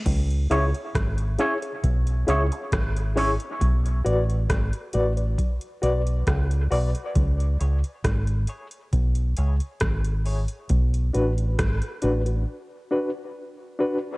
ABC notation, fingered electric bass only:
X:1
M:4/4
L:1/16
Q:1/4=68
K:C#phr
V:1 name="Fingered electric bass" clef=bass
C,,2 C,, z G,,,2 z2 B,,,2 C,, z G,,,3 z | B,,,2 A,,,2 G,,, z A,,,2 z2 B,,,2 C,,2 B,,, z | C,,2 C,, z G,,,2 z2 B,,,2 C,, z G,,,3 z | B,,,2 A,,,2 G,,, z A,,,2 z8 |]